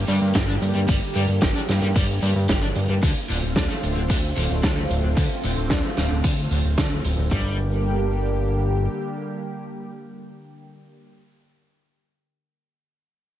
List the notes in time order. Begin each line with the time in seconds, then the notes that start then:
Already playing: D3 G3 A#3 G4
0.08 G2 G3, closed hi-hat
0.22 G2
0.35 G1 G4, kick, snare, closed hi-hat
0.48 D4
0.62 G2, closed hi-hat
0.75 G2 G3
0.88 G1 G3, kick, closed hi-hat
1.15 G2 G3, closed hi-hat
1.29 G2
1.42 G1 G4, kick, snare, closed hi-hat
1.55 D4
1.69 G2, snare, closed hi-hat
1.82 G2 G3
1.96 G1 G3, kick, closed hi-hat
2.22 G2 G3, closed hi-hat
2.36 G2
2.49 G1 G4, kick, snare, closed hi-hat
2.62 D4
2.76 G2, closed hi-hat
2.89 G2 G3
3.03 D2 D3 A3 C4 F4, kick, closed hi-hat
3.29 D1 D3, closed hi-hat
3.43 D1
3.56 D2 D4, kick, snare, closed hi-hat
3.70 A3
3.83 D1, closed hi-hat
3.96 D1 D3
4.10 D2 D3, kick, closed hi-hat
4.36 D1 D3, closed hi-hat
4.50 D1
4.63 D2 D4, kick, snare, closed hi-hat
4.77 A3
4.90 D1, closed hi-hat
5.04 D1 D3
5.17 D2 D3, kick, closed hi-hat
5.44 D1 D3, closed hi-hat
5.57 D1
5.70 D2 D4, kick, snare, closed hi-hat
5.84 A3
5.97 D1, snare, closed hi-hat
6.11 D1 D3
6.24 D2 D3, kick, closed hi-hat
6.51 D1 D3, closed hi-hat
6.64 D1
6.78 D2 D4, kick, snare, closed hi-hat
6.91 A3
7.05 D1, closed hi-hat
7.18 D1 D3
7.31 G1 D3 G3 A#3 G4, kick, floor tom, open hi-hat